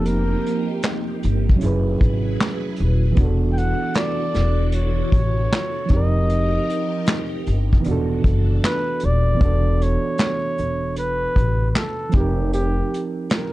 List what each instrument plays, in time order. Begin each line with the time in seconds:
Already playing: upright bass F1, reed electric piano F3 A#3 C4 D#4 G4, string machine F3 A#3 D#4 G4
0.05 flugelhorn A#4, closed hi-hat
0.46 closed hi-hat
0.82 snare, clap, closed hi-hat
1.23 upright bass G1, closed hi-hat
1.49 kick
1.56 reed electric piano F#3 C#4
1.61 upright bass F#1, string machine F#3 E4 G#4 B4, reed electric piano E4 G#4, closed hi-hat
1.66 reed electric piano B4
2.01 upright bass G#1, kick, closed hi-hat
2.41 snare, clap, closed hi-hat
2.76 upright bass D#1, closed hi-hat
3.12 reed electric piano E3 B3
3.16 upright bass E1, string machine E3 D4 F#4 A4, reed electric piano D4 F#4, kick, closed hi-hat
3.23 reed electric piano A4
3.52 flugelhorn G5
3.58 flugelhorn F#5, closed hi-hat
3.94 flugelhorn D5, snare, clap, closed hi-hat
4.34 upright bass E1, snare, closed hi-hat
4.69 flugelhorn D5, closed hi-hat
4.74 flugelhorn C#5
5.12 upright bass A1, kick, closed hi-hat
5.52 snare, clap, closed hi-hat
5.86 reed electric piano F3 C4, string machine D#4, closed hi-hat
5.90 upright bass F1, string machine F3 G4 A#4, reed electric piano D#4 G4, flugelhorn D#5, kick
5.96 reed electric piano A#4
6.29 closed hi-hat
6.70 closed hi-hat
7.06 snare, clap, closed hi-hat
7.47 upright bass G1, closed hi-hat
7.73 kick
7.81 reed electric piano E3 B3, closed hi-hat
7.86 upright bass E1, string machine E3 D4 F#4 A4, reed electric piano D4 F#4
7.91 reed electric piano A4
8.24 upright bass F#1, kick, closed hi-hat
8.64 flugelhorn B4, snare, clap, closed hi-hat
9.00 upright bass D#1, closed hi-hat
9.05 flugelhorn D5
9.34 reed electric piano E3 B3
9.40 upright bass E1, reed electric piano D4 F#4, kick, closed hi-hat
9.45 reed electric piano A4
9.82 flugelhorn C#5, closed hi-hat
10.18 snare, clap, closed hi-hat
10.58 upright bass E1, closed hi-hat
10.96 flugelhorn B4, closed hi-hat
11.36 upright bass A1, kick, closed hi-hat
11.71 flugelhorn B4
11.75 flugelhorn A4, snare, clap, closed hi-hat
12.09 reed electric piano F3 C4, closed hi-hat
12.14 upright bass F1, reed electric piano D#4 G4, flugelhorn G4, kick
12.20 reed electric piano A#4
12.53 flugelhorn G4, closed hi-hat
12.94 closed hi-hat
13.30 flugelhorn A#4, snare, clap, closed hi-hat